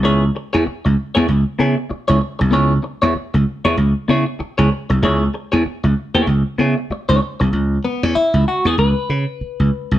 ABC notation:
X:1
M:4/4
L:1/16
Q:"Swing 16ths" 1/4=96
K:C#m
V:1 name="Clean electric guitar"
[B,EGc] z2 [B,EGc] z3 [B,EGc] z2 [B,EGc] z2 [B,EGc] z2 | [B,EGc] z2 [B,EGc] z3 [B,EGc] z2 [B,EGc] z2 [B,EGc] z2 | [B,EGc] z2 [B,EGc] z3 [B,EGc] z2 [B,EGc] z2 [B,EGc] z2 | z2 B, C E2 F G B8 |]
V:2 name="Slap bass" clef=bass
C,,2 z E,, z C,, z E,, C,, z C, z2 C,, z ^B,,, | C,,2 z E,, z C,, z E,, C,, z C, z2 C,, z ^B,,, | C,,2 z E,, z C,, z E,, C,, z C, z2 C,, z ^B,,, | C,,2 z E,, z C,, z E,, C,, z C, z2 C,, z ^B,,, |]